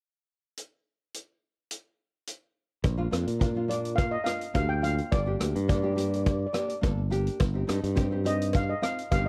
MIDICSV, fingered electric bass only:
0, 0, Header, 1, 2, 480
1, 0, Start_track
1, 0, Key_signature, -2, "major"
1, 0, Tempo, 569801
1, 482, Time_signature, 4, 2, 24, 8
1, 7823, End_track
2, 0, Start_track
2, 0, Title_t, "Fingered electric bass"
2, 0, Program_c, 0, 33
2, 2394, Note_on_c, 0, 34, 99
2, 2582, Note_off_c, 0, 34, 0
2, 2631, Note_on_c, 0, 41, 77
2, 2732, Note_off_c, 0, 41, 0
2, 2756, Note_on_c, 0, 46, 62
2, 3507, Note_off_c, 0, 46, 0
2, 3834, Note_on_c, 0, 38, 80
2, 4209, Note_off_c, 0, 38, 0
2, 4318, Note_on_c, 0, 31, 85
2, 4504, Note_off_c, 0, 31, 0
2, 4557, Note_on_c, 0, 38, 68
2, 4655, Note_off_c, 0, 38, 0
2, 4681, Note_on_c, 0, 43, 77
2, 5431, Note_off_c, 0, 43, 0
2, 5758, Note_on_c, 0, 31, 84
2, 6132, Note_off_c, 0, 31, 0
2, 6241, Note_on_c, 0, 31, 93
2, 6427, Note_off_c, 0, 31, 0
2, 6481, Note_on_c, 0, 43, 76
2, 6579, Note_off_c, 0, 43, 0
2, 6601, Note_on_c, 0, 43, 74
2, 7352, Note_off_c, 0, 43, 0
2, 7681, Note_on_c, 0, 31, 85
2, 7823, Note_off_c, 0, 31, 0
2, 7823, End_track
0, 0, End_of_file